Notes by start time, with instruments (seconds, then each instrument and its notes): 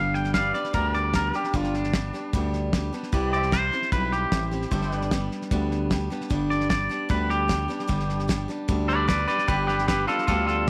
Already playing: fm bass G1, steel-string acoustic guitar G2 D3 G3 B3 D4 G4, clean electric guitar F5
0.14 clean electric guitar G5, snare
0.24 snare
0.34 steel-string acoustic guitar G3 B3 D4 G4, pedal steel guitar B4 D5, clean electric guitar F5, kick, snare, hi-hat pedal
0.54 steel-string acoustic guitar G3 B3 D4 G4, clean electric guitar D5, snare
0.64 snare
0.73 fm bass D2, steel-string acoustic guitar G2 D3 G3 B3 D4 G4, clean electric guitar A#4, kick, snare
0.94 clean electric guitar D5, snare
1.13 steel-string acoustic guitar G3 B3 D4 G4, clean electric guitar A#4, kick, snare, hi-hat pedal
1.34 steel-string acoustic guitar G3 B3 D4 G4, clean electric guitar G4, snare
1.44 snare
1.53 fm bass G1, steel-string acoustic guitar G2 D3 G3 B3 D4 G4, clean electric guitar F4, kick, snare
1.64 snare
1.74 clean electric guitar D4, snare
1.84 snare
1.93 steel-string acoustic guitar G3 B3 D4 G4, kick, snare, hi-hat pedal
2.13 steel-string acoustic guitar G3 B3 D4 G4, snare
2.33 fm bass D2, steel-string acoustic guitar G2 D3 G3 B3 D4 G4, kick, snare
2.53 snare
2.73 steel-string acoustic guitar G3 B3 D4 G4, kick, snare, hi-hat pedal
2.92 steel-string acoustic guitar G3 B3 D4 G4, snare
3.03 snare
3.12 fm bass C2, steel-string acoustic guitar C3 G3 C4 E4 G4, pedal steel guitar B4 D5, kick, snare
3.33 pedal steel guitar C5, clean electric guitar D5, snare
3.40 pedal steel guitar E5, snare
3.51 steel-string acoustic guitar G3 C4 E4, clean electric guitar C5, kick, snare, hi-hat pedal
3.72 steel-string acoustic guitar C4 E4 G4, snare
3.82 snare
3.92 fm bass B1, steel-string acoustic guitar G3 C4 E4 G4, clean electric guitar B4, kick, snare
4.12 clean electric guitar G4, snare
4.32 fm bass A1, steel-string acoustic guitar G3 C4 E4 G4, kick, snare, hi-hat pedal
4.51 steel-string acoustic guitar C4 E4 G4, snare
4.62 snare
4.71 fm bass G1, steel-string acoustic guitar G2 D3 G3 B3 D4 G4, pedal steel guitar C5 E5, kick, snare
4.82 snare
4.91 pedal steel guitar B4, snare
4.98 pedal steel guitar D5, snare
5.11 steel-string acoustic guitar G3 B3 D4 G4, kick, snare, hi-hat pedal
5.31 snare
5.42 snare
5.51 fm bass D2, steel-string acoustic guitar G2 D3 G3 B3 D4 G4, kick, snare
5.71 snare
5.90 steel-string acoustic guitar G3 B3 D4 G4, kick, snare, hi-hat pedal
6.10 steel-string acoustic guitar G3 B3 D4 G4, snare
6.21 snare
6.30 fm bass G1, steel-string acoustic guitar G2 D3 G3 B3 D4 G4, kick, snare
6.50 clean electric guitar D5, snare
6.60 snare
6.69 steel-string acoustic guitar G3 B3 D4 G4, clean electric guitar D5, kick, snare, hi-hat pedal
6.89 steel-string acoustic guitar G3 B3 D4 G4, snare
7.09 fm bass D2, steel-string acoustic guitar G2 D3 G3 B3 D4 G4, clean electric guitar B4, kick, snare
7.30 clean electric guitar G4, snare
7.48 steel-string acoustic guitar G3 B3 D4 G4, kick, snare, hi-hat pedal
7.68 steel-string acoustic guitar G3 B3 D4 G4, snare
7.80 snare
7.87 fm bass G1, steel-string acoustic guitar G2 D3 G3 B3 D4 G4, kick, snare
7.99 snare
8.09 snare
8.19 snare
8.28 steel-string acoustic guitar G3 B3 D4 G4, kick, snare, hi-hat pedal
8.48 steel-string acoustic guitar G3 B3 D4 G4, snare
8.68 fm bass D2, steel-string acoustic guitar G2 D3 G3 B3 D4 G4, kick, snare
8.88 clean electric guitar B4 D5, snare
9.08 steel-string acoustic guitar G3 B3 D4 G4, clean electric guitar B4 D5, kick, snare, hi-hat pedal
9.28 steel-string acoustic guitar G3 B3 D4 G4, clean electric guitar B4 D5, snare
9.38 snare
9.48 fm bass G1, steel-string acoustic guitar G2 D3 G3 B3 D4 G4, clean electric guitar G4 B4, kick, snare
9.67 clean electric guitar G4 B4, snare
9.79 snare
9.88 steel-string acoustic guitar G3 B3 D4 G4, clean electric guitar G4 B4, kick, snare, hi-hat pedal
10.07 steel-string acoustic guitar G3 B3 D4 G4, clean electric guitar F4 A4, snare
10.19 snare
10.27 fm bass D2, steel-string acoustic guitar G2 D3 G3 B3 D4 G4, clean electric guitar F4 A4, kick, snare
10.47 clean electric guitar F4 A4, snare